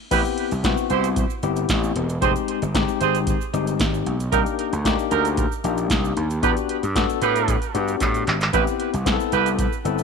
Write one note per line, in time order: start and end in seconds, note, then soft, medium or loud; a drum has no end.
0.11 0.23 A1 loud
0.11 0.53 B3 medium
0.11 0.53 C4 medium
0.11 0.20 E4 loud
0.11 0.53 E4 medium
0.11 0.53 G4 medium
0.11 0.21 G4 loud
0.11 0.20 B4 loud
0.11 kick loud
0.11 closed hi-hat medium
0.11 crash loud
0.11 shaker medium
0.25 closed hi-hat soft
0.25 shaker medium
0.38 closed hi-hat medium
0.51 0.73 C2 medium
0.51 closed hi-hat medium
0.51 shaker soft
0.64 1.25 B3 medium
0.64 1.26 C4 medium
0.64 1.26 E4 medium
0.64 1.26 F#4 medium
0.64 kick loud
0.64 snare loud
0.64 closed hi-hat medium
0.64 shaker medium
0.77 shaker medium
0.90 1.24 C2 medium
0.90 1.07 E4 loud
0.90 1.07 G4 loud
0.90 1.07 C5 loud
0.90 closed hi-hat medium
0.90 shaker medium
1.04 closed hi-hat medium
1.04 shaker medium
1.16 kick loud
1.16 closed hi-hat medium
1.16 shaker medium
1.30 shaker medium
1.43 1.65 G1 medium
1.43 2.04 B3 medium
1.43 2.05 C4 medium
1.43 2.05 E4 medium
1.43 2.05 G4 medium
1.43 closed hi-hat medium
1.43 shaker soft
1.56 closed hi-hat soft
1.56 shaker medium
1.69 1.91 A1 loud
1.69 kick loud
1.69 snare loud
1.69 closed hi-hat medium
1.69 shaker medium
1.83 shaker medium
1.95 2.17 E1 loud
1.95 closed hi-hat medium
2.09 closed hi-hat soft
2.09 shaker medium
2.22 2.33 F1 loud
2.22 2.63 G#3 medium
2.22 2.63 C4 medium
2.22 2.31 C4 loud
2.22 2.64 D#4 medium
2.22 2.64 G4 medium
2.22 2.31 G#4 loud
2.22 2.31 C5 loud
2.22 kick loud
2.22 closed hi-hat medium
2.22 shaker medium
2.36 closed hi-hat soft
2.36 shaker medium
2.48 closed hi-hat medium
2.62 2.84 G1 medium
2.62 closed hi-hat medium
2.62 shaker medium
2.74 3.36 G#3 medium
2.74 3.36 C4 medium
2.74 3.36 D#4 medium
2.74 3.36 G4 loud
2.74 kick loud
2.74 snare loud
2.74 closed hi-hat medium
2.74 shaker medium
2.88 shaker medium
3.01 3.34 G#1 medium
3.01 3.18 C4 loud
3.01 3.18 G#4 loud
3.01 3.18 C5 loud
3.01 closed hi-hat medium
3.01 shaker medium
3.15 closed hi-hat medium
3.15 shaker medium
3.27 kick loud
3.27 closed hi-hat loud
3.27 shaker medium
3.41 shaker medium
3.53 3.75 G1 loud
3.53 4.15 G#3 medium
3.53 4.15 C4 medium
3.53 4.15 D#4 medium
3.53 4.15 G4 medium
3.53 closed hi-hat medium
3.53 shaker medium
3.67 closed hi-hat soft
3.67 shaker medium
3.80 4.02 G#1 loud
3.80 kick loud
3.80 snare loud
3.80 closed hi-hat loud
3.80 shaker medium
3.94 shaker medium
4.06 4.28 B1 medium
4.06 closed hi-hat medium
4.20 closed hi-hat soft
4.20 shaker soft
4.32 4.44 C2 loud
4.32 4.74 A#3 medium
4.32 4.74 D4 medium
4.32 4.41 D#4 loud
4.32 4.74 D#4 medium
4.32 4.41 G4 loud
4.32 4.74 G4 medium
4.32 4.41 A#4 loud
4.32 kick loud
4.32 closed hi-hat medium
4.32 shaker medium
4.46 closed hi-hat soft
4.46 shaker medium
4.59 closed hi-hat medium
4.73 4.95 D2 medium
4.73 closed hi-hat medium
4.73 shaker medium
4.85 5.46 A#3 medium
4.85 5.47 D4 medium
4.85 5.47 D#4 medium
4.85 5.47 G4 loud
4.85 kick loud
4.85 snare loud
4.85 closed hi-hat medium
4.85 shaker medium
4.99 shaker medium
5.11 5.45 D2 loud
5.11 5.28 D#4 loud
5.11 5.28 G4 medium
5.11 5.28 A#4 loud
5.11 closed hi-hat medium
5.11 shaker medium
5.25 closed hi-hat medium
5.25 shaker medium
5.37 kick loud
5.37 closed hi-hat medium
5.37 shaker medium
5.52 shaker medium
5.64 5.86 A#1 medium
5.64 6.25 A#3 medium
5.64 6.26 D4 medium
5.64 6.26 D#4 medium
5.64 6.26 G4 medium
5.64 closed hi-hat medium
5.64 shaker medium
5.78 closed hi-hat soft
5.78 shaker soft
5.90 6.12 C2 loud
5.90 kick loud
5.90 snare loud
5.90 closed hi-hat medium
5.90 shaker medium
6.05 shaker medium
6.17 6.38 D#2 loud
6.17 closed hi-hat medium
6.30 closed hi-hat soft
6.30 shaker medium
6.43 6.54 E2 loud
6.43 6.84 B3 medium
6.43 6.52 B3 loud
6.43 6.84 D4 medium
6.43 6.84 F#4 medium
6.43 6.52 G4 loud
6.43 6.85 G4 medium
6.43 6.52 B4 loud
6.43 kick loud
6.43 closed hi-hat medium
6.43 shaker medium
6.57 closed hi-hat soft
6.57 shaker medium
6.69 closed hi-hat medium
6.83 7.05 G2 medium
6.83 closed hi-hat medium
6.83 shaker medium
6.95 7.57 B3 medium
6.95 7.57 D4 medium
6.95 7.57 F#4 medium
6.95 7.57 A4 loud
6.95 kick loud
6.95 snare loud
6.95 closed hi-hat medium
6.95 shaker medium
7.09 closed hi-hat soft
7.09 shaker medium
7.22 7.55 A2 medium
7.22 7.56 B3 loud
7.22 7.56 G4 loud
7.22 7.56 B4 loud
7.22 closed hi-hat medium
7.22 shaker medium
7.36 closed hi-hat medium
7.36 shaker medium
7.48 kick loud
7.48 closed hi-hat medium
7.48 shaker medium
7.62 closed hi-hat soft
7.62 shaker medium
7.74 7.96 G2 medium
7.74 8.36 B3 medium
7.74 8.36 D4 medium
7.74 8.36 F#4 medium
7.74 8.36 G4 medium
7.74 closed hi-hat medium
7.74 shaker medium
7.88 closed hi-hat soft
7.88 shaker medium
8.00 8.23 A2 loud
8.00 kick loud
8.00 clap medium
8.00 closed hi-hat medium
8.00 shaker medium
8.14 closed hi-hat soft
8.14 shaker medium
8.27 8.49 G#1 medium
8.27 clap loud
8.27 closed hi-hat medium
8.41 clap loud
8.41 closed hi-hat soft
8.41 shaker medium
8.53 8.65 A1 loud
8.53 8.95 B3 medium
8.53 8.95 C4 medium
8.53 8.62 E4 loud
8.53 8.95 E4 medium
8.53 8.62 G4 loud
8.53 8.95 G4 medium
8.53 8.62 B4 loud
8.53 kick loud
8.53 closed hi-hat medium
8.53 shaker medium
8.67 closed hi-hat soft
8.67 shaker medium
8.80 closed hi-hat medium
8.94 9.16 C2 medium
8.94 closed hi-hat medium
8.94 shaker soft
9.06 9.68 B3 medium
9.06 9.68 C4 medium
9.06 9.68 E4 medium
9.06 9.13 G#4 medium
9.06 kick loud
9.06 snare loud
9.06 closed hi-hat medium
9.06 shaker medium
9.13 9.71 A4 medium
9.20 shaker medium
9.32 9.66 C2 medium
9.32 9.49 E4 loud
9.32 9.49 G4 loud
9.32 9.49 B4 loud
9.32 closed hi-hat medium
9.32 shaker medium
9.46 closed hi-hat medium
9.46 shaker medium
9.58 kick loud
9.58 closed hi-hat loud
9.58 shaker medium
9.73 shaker medium
9.84 10.03 G1 medium
9.84 10.03 B3 medium
9.84 10.03 C4 medium
9.84 10.03 E4 medium
9.84 10.03 A4 medium
9.84 closed hi-hat medium
9.84 shaker medium
9.98 closed hi-hat soft
9.98 shaker medium